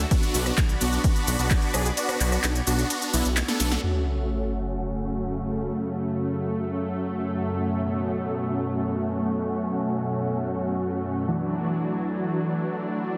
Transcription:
Already playing: analog synth pad F#4
0.11 supersaw synth B3 D4 F#4, analog synth pad D5 B5, kick, closed hi-hat, ride, shaker
0.23 closed hi-hat, shaker
0.34 detuned saw bass B1, open hi-hat, shaker
0.46 supersaw synth B3 D4 F#4, cross-stick, closed hi-hat, shaker
0.58 detuned saw bass B1, kick, clap, closed hi-hat, ride, shaker
0.69 closed hi-hat, shaker
0.81 detuned saw bass B1, supersaw synth B3 D4 F#4, open hi-hat, shaker
0.93 closed hi-hat, shaker
1.04 kick, closed hi-hat, ride, shaker
1.16 closed hi-hat, shaker
1.27 detuned saw bass B1, open hi-hat, shaker
1.39 detuned saw bass B1, supersaw synth B3 D4 F#4, closed hi-hat, shaker
1.51 kick, clap, closed hi-hat, ride, shaker
1.62 closed hi-hat
1.74 detuned saw bass B1, supersaw synth B3 D4 G#4, cross-stick, open hi-hat, shaker
1.86 closed hi-hat, shaker
1.97 supersaw synth B3 D4 F#4, closed hi-hat, ride, shaker
2.09 cross-stick, closed hi-hat, shaker
2.20 detuned saw bass B1, clap, open hi-hat, shaker
2.32 supersaw synth B3 D4 F#4, cross-stick, closed hi-hat, shaker
2.44 detuned saw bass B1, clap, closed hi-hat, ride, shaker
2.55 closed hi-hat, shaker
2.67 detuned saw bass B1, supersaw synth B3 D4 F#4, open hi-hat, shaker
2.79 closed hi-hat, shaker
2.90 supersaw synth B3 D4 F#4, closed hi-hat, ride, shaker
3.02 closed hi-hat, shaker
3.13 detuned saw bass B1, supersaw synth B3 D4 E4, open hi-hat, shaker
3.25 detuned saw bass B1, closed hi-hat, shaker
3.37 snare, clap, closed hi-hat, ride, shaker
3.48 supersaw synth B3 D4 A4, snare, closed hi-hat, shaker
3.60 detuned saw bass B1, snare, open hi-hat, shaker
3.72 snare, closed hi-hat, shaker
3.83 analog synth pad F#2 C#3 A3, supersaw synth A3 C#4 F#4, sub drop
7.55 analog synth pad B2, supersaw synth A3 C#4 F#4
11.27 supersaw synth E3 F#3 A3 D4 F#4, analog synth pad E3 F#3 D4

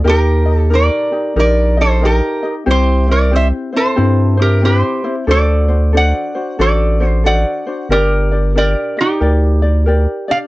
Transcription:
0.04 analog synth bass D#2, ukulele D#4 G4 A#4 D#5, resonator guitar played with a steel bar G4
0.09 resonator guitar played with a steel bar A#4
0.46 ukulele D#4 G4 D#5
0.55 resonator guitar played with a steel bar A4
0.70 ukulele D#4 G4 A#4, resonator guitar played with a steel bar A#4
0.75 resonator guitar played with a steel bar D5
1.12 ukulele D#4 G4
1.36 analog synth bass A#1, ukulele D#4 G4 A#4, resonator guitar played with a steel bar A#4 D5
1.77 ukulele D#4 G4 D#5, resonator guitar played with a steel bar A4
1.81 resonator guitar played with a steel bar C5
2.01 ukulele D#4 G4 A#4 D#5
2.05 resonator guitar played with a steel bar G4 A#4
2.43 ukulele D#4 G4 D#5
2.66 analog synth bass C2, ukulele C4 E4 G4 C5
2.71 resonator guitar played with a steel bar G4 C5
3.07 ukulele C4 E4 C5, resonator guitar played with a steel bar A#4
3.12 resonator guitar played with a steel bar D5
3.31 ukulele C4 E4 G4 C5
3.36 resonator guitar played with a steel bar C5 E5
3.73 ukulele C4 E4 C5, resonator guitar played with a steel bar A4
3.77 resonator guitar played with a steel bar C5
3.96 analog synth bass G2, ukulele C4 E4 G4 C5
4.37 ukulele C4 E4 C5
4.42 resonator guitar played with a steel bar G4 A#4
4.62 ukulele C4 E4 G4 C5, resonator guitar played with a steel bar G4 C5
5.04 ukulele C4 E4 C5
5.27 analog synth bass D2, ukulele D4 F#4 A4 C5, resonator guitar played with a steel bar A4 D5
5.68 ukulele D4 F#4 C5
5.93 ukulele D4 F#4 A4 C5
5.97 resonator guitar played with a steel bar D5 F#5
6.35 ukulele D4 F#4 C5
6.59 analog synth bass A1, ukulele D4 F#4 A4 C5, resonator guitar played with a steel bar A4 D5
7.00 ukulele D4 F#4 C5
7.07 resonator guitar played with a steel bar C5
7.24 ukulele D4 F#4 A4 C5, resonator guitar played with a steel bar D5 F#5
7.67 ukulele D4 F#4 C5
7.89 analog synth bass G1, ukulele D4 G4 A#4 D5, resonator guitar played with a steel bar G4 A#4
8.31 ukulele D4 G4 D5
8.55 ukulele D4 G4 A#4 D5, resonator guitar played with a steel bar A#4 D5
8.97 ukulele G4 D5, resonator guitar played with a steel bar G4
9.01 resonator guitar played with a steel bar D#4
9.20 analog synth bass D2, ukulele G4 A#4 D5
9.62 ukulele G4 D5
9.86 ukulele G4 A#4 D5
10.28 ukulele D4 G4 D5, resonator guitar played with a steel bar D5 F5

